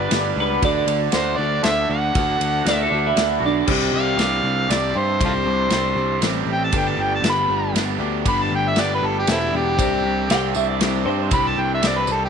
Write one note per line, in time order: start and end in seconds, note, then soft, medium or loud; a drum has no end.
0.00 0.10 G3 medium
0.00 0.11 G3 soft
0.00 0.36 B3 medium
0.00 0.12 D4 soft
0.00 0.13 G4 medium
0.00 0.60 G4 medium
0.00 0.12 B4 soft
0.00 0.36 B4 medium
0.00 0.60 B4 medium
0.00 0.34 D5 medium
0.00 0.61 D5 medium
0.11 0.32 G1 medium
0.11 0.38 G3 medium
0.11 0.38 D4 medium
0.11 0.38 G4 medium
0.11 snare medium
0.11 ride medium
0.16 0.37 B4 medium
0.36 0.57 C#2 medium
0.36 0.63 B3 medium
0.36 0.64 G4 medium
0.36 0.63 B4 soft
0.40 0.63 G3 soft
0.40 0.64 D4 soft
0.40 0.64 B4 medium
0.62 0.83 D2 medium
0.62 2.18 D3 medium
0.62 1.13 A3 medium
0.62 1.15 D4 medium
0.62 3.64 F#4 medium
0.62 1.15 F#4 medium
0.62 3.64 A4 medium
0.62 1.16 A4 medium
0.62 1.01 D5 medium
0.62 3.65 D5 medium
0.62 kick loud
0.62 ride medium
0.86 1.08 D2 medium
0.86 1.63 D3 medium
0.86 ride medium
1.12 1.34 D2 medium
1.12 1.39 A3 medium
1.12 1.40 D4 medium
1.12 1.38 C5 medium
1.12 snare medium
1.12 ride medium
1.16 1.40 F#4 medium
1.16 1.39 A4 medium
1.36 1.59 D2 medium
1.36 2.66 D4 medium
1.36 1.63 D5 loud
1.40 1.65 D4 soft
1.40 1.66 F#4 soft
1.40 1.65 A4 soft
1.63 1.84 D2 loud
1.63 2.13 D3 medium
1.63 2.16 A3 medium
1.63 2.19 D4 medium
1.63 2.17 F#4 medium
1.63 1.69 A4 medium
1.63 1.70 C5 medium
1.63 1.88 E5 medium
1.63 snare medium
1.63 ride medium
1.68 2.17 A4 medium
1.89 2.10 D2 medium
1.89 2.62 F#4 medium
1.89 2.74 F#5 loud
2.15 2.36 D2 medium
2.15 2.68 D3 medium
2.15 2.66 A3 medium
2.15 kick loud
2.15 ride medium
2.19 2.68 D4 medium
2.19 2.68 F#4 medium
2.19 2.68 A4 medium
2.38 2.61 D2 medium
2.38 3.14 D3 medium
2.38 ride medium
2.63 2.86 D2 medium
2.63 3.38 F#4 medium
2.63 ride medium
2.67 2.92 A3 medium
2.67 2.93 D4 medium
2.67 2.93 F#4 medium
2.67 2.91 A4 medium
2.67 2.80 D5 medium
2.67 snare medium
2.74 3.13 E5 loud
2.82 3.05 A4 medium
2.90 3.12 D2 medium
2.90 3.66 D4 medium
2.90 3.17 A4 medium
2.95 3.19 D4 soft
2.95 3.19 F#4 soft
3.06 3.43 E4 medium
3.15 3.37 D2 loud
3.15 3.66 D3 medium
3.15 snare medium
3.15 ride medium
3.20 3.44 A3 medium
3.20 3.45 D4 medium
3.20 3.45 F#4 medium
3.20 3.45 A4 medium
3.40 3.62 B1 medium
3.40 3.67 F#4 medium
3.46 3.69 D4 medium
3.46 3.70 D4 soft
3.46 3.70 F#4 soft
3.46 3.70 A4 medium
3.66 3.91 C2 medium
3.66 4.23 C3 medium
3.66 4.16 G3 medium
3.66 3.93 C4 medium
3.66 6.69 G4 medium
3.66 6.69 C5 medium
3.66 kick loud
3.66 crash loud
3.70 4.20 C3 medium
3.70 4.20 G3 medium
3.70 4.20 C4 medium
3.70 4.23 D4 medium
3.70 4.23 G4 medium
3.70 6.70 D5 medium
3.91 4.16 C2 medium
3.91 4.18 C4 medium
3.91 4.20 D4 medium
3.91 4.20 G4 medium
3.95 4.73 F5 medium
4.17 4.41 C2 medium
4.17 4.45 G3 soft
4.17 snare medium
4.17 ride medium
4.22 4.46 C4 medium
4.22 4.45 D4 medium
4.22 4.43 G4 medium
4.43 4.67 C2 medium
4.43 4.70 C4 soft
4.43 4.70 D4 soft
4.68 4.93 C2 medium
4.68 5.16 C3 medium
4.68 4.95 G3 medium
4.68 4.96 C4 medium
4.68 4.95 D4 medium
4.68 5.00 D5 medium
4.68 snare medium
4.68 ride medium
4.72 4.93 G4 medium
4.94 5.19 G2 medium
4.94 5.20 C4 soft
4.94 5.21 D4 soft
4.94 5.20 G4 soft
4.98 5.22 C5 medium
5.20 5.44 C2 medium
5.20 5.71 C3 medium
5.20 5.69 G3 medium
5.20 5.70 C4 medium
5.20 5.71 D4 medium
5.20 5.73 G4 medium
5.20 kick loud
5.20 ride medium
5.25 5.33 F4 medium
5.25 5.32 A4 medium
5.25 6.22 C5 loud
5.44 5.69 C2 medium
5.44 5.70 C4 medium
5.44 5.71 D4 medium
5.44 5.72 G4 medium
5.70 5.94 C2 medium
5.70 5.96 G3 medium
5.70 5.96 C4 medium
5.70 5.96 D4 medium
5.70 5.94 G4 medium
5.70 snare medium
5.70 ride medium
5.95 6.19 C2 medium
5.95 6.21 C4 soft
5.95 6.23 D4 soft
5.95 6.22 G4 soft
6.20 6.45 A1 medium
6.20 6.71 C3 loud
6.20 6.72 G3 medium
6.20 6.72 C4 medium
6.20 6.73 D4 medium
6.20 6.73 G4 medium
6.20 snare medium
6.20 ride medium
6.44 6.70 A1 medium
6.44 6.74 D4 medium
6.44 6.74 G4 medium
6.49 6.72 C4 medium
6.49 6.62 G5 medium
6.64 6.74 A5 medium
6.72 6.96 G1 medium
6.72 7.23 G2 medium
6.72 7.24 D3 medium
6.72 6.99 G3 medium
6.72 7.22 A3 medium
6.72 7.23 B3 medium
6.72 7.25 D4 medium
6.72 8.98 G4 medium
6.72 7.26 G4 medium
6.72 8.99 A4 medium
6.72 9.00 B4 medium
6.72 kick loud
6.72 ride medium
6.77 6.90 G5 medium
6.89 7.04 A5 medium
6.97 7.21 G1 medium
6.97 7.22 G3 medium
6.97 7.23 B3 medium
6.97 7.25 D4 medium
6.97 7.26 G4 medium
7.03 7.13 G5 medium
7.15 7.25 A5 medium
7.22 7.46 G1 medium
7.22 7.75 G3 medium
7.22 7.49 A3 medium
7.22 7.50 B3 medium
7.22 7.49 D4 medium
7.22 snare medium
7.22 ride medium
7.27 7.48 G4 medium
7.27 7.76 B5 loud
7.48 7.72 G1 medium
7.48 7.72 A3 soft
7.48 7.73 B3 soft
7.48 7.75 D4 soft
7.48 7.75 G4 soft
7.74 7.98 G1 medium
7.74 8.23 G2 medium
7.74 8.24 D3 loud
7.74 8.02 G3 medium
7.74 8.00 A3 medium
7.74 8.00 B3 medium
7.74 7.98 D4 medium
7.74 7.98 G4 medium
7.74 snare medium
7.74 ride medium
7.99 8.23 D2 medium
7.99 8.25 G3 medium
7.99 8.26 A3 soft
7.99 8.26 B3 soft
7.99 8.26 D4 soft
7.99 8.26 G4 medium
8.25 8.49 G1 medium
8.25 8.77 G2 medium
8.25 8.78 D3 medium
8.25 8.54 G3 medium
8.25 8.75 A3 medium
8.25 8.76 B3 medium
8.25 8.77 D4 medium
8.25 8.78 G4 medium
8.25 8.44 B5 medium
8.25 kick loud
8.25 ride medium
8.42 8.53 A5 medium
8.51 8.74 G1 medium
8.51 8.76 G3 medium
8.51 8.77 B3 medium
8.51 8.79 D4 medium
8.51 8.79 G4 medium
8.55 8.70 G5 medium
8.68 8.82 E5 medium
8.76 9.00 G1 medium
8.76 9.28 G3 medium
8.76 9.26 A3 medium
8.76 9.27 B3 medium
8.76 9.29 D4 medium
8.76 9.30 G4 medium
8.76 snare medium
8.76 ride medium
8.81 8.91 D5 medium
8.95 9.08 B4 medium
9.01 9.26 G1 medium
9.01 9.75 G4 soft
9.01 9.79 A4 soft
9.01 9.79 B4 medium
9.06 9.17 A4 medium
9.19 9.29 G4 medium
9.27 9.51 E1 medium
9.27 9.77 G2 medium
9.27 9.76 D3 loud
9.27 9.56 G3 medium
9.27 9.53 A3 medium
9.27 9.39 A3 medium
9.27 9.53 B3 medium
9.27 9.38 C4 medium
9.27 9.53 D4 medium
9.27 9.54 E4 medium
9.27 9.52 G4 medium
9.27 snare medium
9.27 ride medium
9.53 9.77 E1 medium
9.53 9.78 G3 medium
9.53 9.78 A3 soft
9.53 9.79 B3 soft
9.53 9.79 D4 soft
9.53 9.79 G4 soft
9.53 10.54 G4 loud
9.76 10.02 C2 medium
9.76 10.30 C3 medium
9.76 10.27 G3 medium
9.76 10.28 C4 medium
9.76 12.29 G4 medium
9.76 12.29 C5 medium
9.76 12.29 D5 medium
9.76 kick loud
9.76 ride medium
9.76 tambourine loud
9.80 10.29 D4 medium
9.80 10.31 G4 medium
10.03 10.27 C2 medium
10.03 10.30 C4 medium
10.03 10.31 D4 medium
10.03 10.32 G4 medium
10.27 10.53 C2 medium
10.27 10.80 G3 medium
10.27 10.80 C4 medium
10.27 10.82 D4 medium
10.27 10.55 G5 medium
10.27 snare medium
10.27 ride medium
10.31 10.82 G4 medium
10.54 10.79 C2 medium
10.54 10.68 E5 medium
10.54 tambourine medium
10.68 10.83 D5 medium
10.80 11.04 C2 medium
10.80 11.30 C3 medium
10.80 11.33 G3 medium
10.80 11.32 C4 medium
10.80 11.34 D4 medium
10.80 11.34 G4 medium
10.80 11.05 C5 medium
10.80 snare medium
10.80 ride medium
11.06 11.29 G2 medium
11.06 11.35 G4 medium
11.06 11.31 C5 medium
11.10 11.32 C4 medium
11.10 11.33 D4 medium
11.31 11.55 C2 loud
11.31 11.83 C3 medium
11.31 11.82 G3 medium
11.31 11.82 C4 medium
11.31 11.84 D4 medium
11.31 11.84 G4 medium
11.31 11.49 B5 loud
11.31 kick loud
11.31 ride medium
11.31 tambourine medium
11.47 11.62 A5 medium
11.57 11.81 C2 medium
11.57 11.82 C4 medium
11.57 11.84 D4 medium
11.57 11.85 G4 medium
11.57 11.71 G5 medium
11.74 11.89 E5 medium
11.83 12.06 C2 medium
11.83 12.29 G3 medium
11.83 12.29 C4 medium
11.83 12.29 D4 medium
11.83 12.29 G4 medium
11.83 snare medium
11.83 ride medium
11.87 12.00 D5 loud
11.98 12.09 B4 medium
12.07 12.29 C2 medium
12.07 tambourine loud
12.12 12.22 A4 medium
12.25 12.29 G4 medium